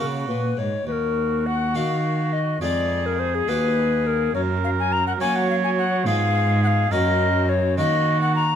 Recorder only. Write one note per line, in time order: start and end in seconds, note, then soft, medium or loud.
0.28 0.60 B4 medium
0.58 0.87 C#5 soft
0.88 1.48 A#4 medium
0.88 0.93 B4 medium
1.46 1.77 F#5 medium
1.76 2.34 F5 medium
2.33 2.61 D#5 medium
2.62 3.07 D5 medium
3.06 3.21 A#4 medium
3.19 3.36 C5 medium
3.35 3.50 G#4 medium
3.49 4.08 B4 medium
4.07 4.34 A#4 medium
4.34 4.41 C#5 medium
4.64 4.70 F5 medium
4.79 4.94 G#5 medium
4.92 5.07 A#5 medium
5.07 5.13 F#5 medium
5.21 5.37 G#5 loud
5.36 5.50 F#5 medium
5.50 5.56 F5 medium
5.64 5.70 G#5 medium
5.78 6.09 F#5 medium
6.07 6.63 F5 loud
6.64 6.91 F5 medium
6.64 6.68 F#5 medium
6.92 7.51 D#5 loud
7.49 7.78 C#5 loud
7.78 8.20 D#5 loud
8.22 8.35 F#5 medium
8.36 8.55 A#5 loud